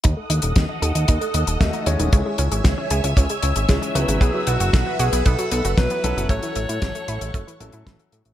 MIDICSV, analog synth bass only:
0, 0, Header, 1, 2, 480
1, 0, Start_track
1, 0, Tempo, 521739
1, 36, Time_signature, 4, 2, 24, 8
1, 7670, End_track
2, 0, Start_track
2, 0, Title_t, "Analog synth bass"
2, 0, Program_c, 0, 38
2, 46, Note_on_c, 0, 39, 99
2, 135, Note_off_c, 0, 39, 0
2, 275, Note_on_c, 0, 39, 92
2, 369, Note_off_c, 0, 39, 0
2, 396, Note_on_c, 0, 27, 82
2, 490, Note_off_c, 0, 27, 0
2, 516, Note_on_c, 0, 39, 97
2, 610, Note_off_c, 0, 39, 0
2, 756, Note_on_c, 0, 39, 93
2, 850, Note_off_c, 0, 39, 0
2, 876, Note_on_c, 0, 39, 81
2, 970, Note_off_c, 0, 39, 0
2, 1001, Note_on_c, 0, 39, 98
2, 1092, Note_off_c, 0, 39, 0
2, 1236, Note_on_c, 0, 39, 91
2, 1330, Note_off_c, 0, 39, 0
2, 1355, Note_on_c, 0, 27, 80
2, 1450, Note_off_c, 0, 27, 0
2, 1478, Note_on_c, 0, 39, 103
2, 1571, Note_off_c, 0, 39, 0
2, 1716, Note_on_c, 0, 39, 89
2, 1810, Note_off_c, 0, 39, 0
2, 1836, Note_on_c, 0, 27, 81
2, 1930, Note_off_c, 0, 27, 0
2, 1958, Note_on_c, 0, 37, 99
2, 2051, Note_off_c, 0, 37, 0
2, 2196, Note_on_c, 0, 37, 93
2, 2290, Note_off_c, 0, 37, 0
2, 2316, Note_on_c, 0, 32, 80
2, 2410, Note_off_c, 0, 32, 0
2, 2436, Note_on_c, 0, 37, 102
2, 2530, Note_off_c, 0, 37, 0
2, 2676, Note_on_c, 0, 37, 96
2, 2770, Note_off_c, 0, 37, 0
2, 2796, Note_on_c, 0, 37, 81
2, 2890, Note_off_c, 0, 37, 0
2, 2915, Note_on_c, 0, 37, 101
2, 3009, Note_off_c, 0, 37, 0
2, 3156, Note_on_c, 0, 37, 97
2, 3250, Note_off_c, 0, 37, 0
2, 3276, Note_on_c, 0, 32, 82
2, 3370, Note_off_c, 0, 32, 0
2, 3396, Note_on_c, 0, 37, 101
2, 3490, Note_off_c, 0, 37, 0
2, 3635, Note_on_c, 0, 37, 92
2, 3729, Note_off_c, 0, 37, 0
2, 3755, Note_on_c, 0, 32, 82
2, 3849, Note_off_c, 0, 32, 0
2, 3873, Note_on_c, 0, 35, 98
2, 3968, Note_off_c, 0, 35, 0
2, 4115, Note_on_c, 0, 35, 94
2, 4210, Note_off_c, 0, 35, 0
2, 4235, Note_on_c, 0, 30, 81
2, 4329, Note_off_c, 0, 30, 0
2, 4357, Note_on_c, 0, 35, 100
2, 4450, Note_off_c, 0, 35, 0
2, 4595, Note_on_c, 0, 35, 95
2, 4690, Note_off_c, 0, 35, 0
2, 4715, Note_on_c, 0, 35, 83
2, 4809, Note_off_c, 0, 35, 0
2, 4839, Note_on_c, 0, 35, 100
2, 4931, Note_off_c, 0, 35, 0
2, 5076, Note_on_c, 0, 35, 94
2, 5170, Note_off_c, 0, 35, 0
2, 5196, Note_on_c, 0, 30, 83
2, 5290, Note_off_c, 0, 30, 0
2, 5313, Note_on_c, 0, 35, 104
2, 5409, Note_off_c, 0, 35, 0
2, 5555, Note_on_c, 0, 35, 92
2, 5650, Note_off_c, 0, 35, 0
2, 5675, Note_on_c, 0, 30, 82
2, 5770, Note_off_c, 0, 30, 0
2, 5790, Note_on_c, 0, 33, 104
2, 5887, Note_off_c, 0, 33, 0
2, 6035, Note_on_c, 0, 33, 93
2, 6129, Note_off_c, 0, 33, 0
2, 6156, Note_on_c, 0, 45, 83
2, 6250, Note_off_c, 0, 45, 0
2, 6276, Note_on_c, 0, 33, 102
2, 6370, Note_off_c, 0, 33, 0
2, 6515, Note_on_c, 0, 33, 94
2, 6609, Note_off_c, 0, 33, 0
2, 6635, Note_on_c, 0, 33, 81
2, 6730, Note_off_c, 0, 33, 0
2, 6754, Note_on_c, 0, 30, 102
2, 6849, Note_off_c, 0, 30, 0
2, 6996, Note_on_c, 0, 33, 91
2, 7090, Note_off_c, 0, 33, 0
2, 7116, Note_on_c, 0, 45, 80
2, 7210, Note_off_c, 0, 45, 0
2, 7237, Note_on_c, 0, 33, 104
2, 7331, Note_off_c, 0, 33, 0
2, 7476, Note_on_c, 0, 45, 90
2, 7570, Note_off_c, 0, 45, 0
2, 7596, Note_on_c, 0, 33, 82
2, 7670, Note_off_c, 0, 33, 0
2, 7670, End_track
0, 0, End_of_file